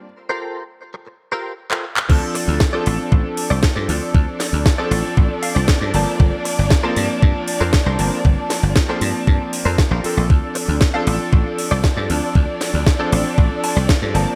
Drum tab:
CC |----------------|x---------------|----------------|----------------|
HH |----------------|--o---o---o---o-|--o---o---o---o-|--o---o---o---o-|
CP |-------------x-x|----------------|----------------|----------------|
SD |----------------|----o-------o---|--o-o-------o---|----o-------o---|
BD |----------------|o---o---o---o---|o---o---o---o---|o---o---o---o---|

CC |----------------|----------------|----------------|
HH |--o---o---o---o-|--o---o---o---o-|--o---o---o---o-|
CP |----------------|----------------|----------------|
SD |--o-o-------o---|----o-------o---|--o-o-------o---|
BD |o---o---o---o---|o---o---o---o---|o---o---o---o---|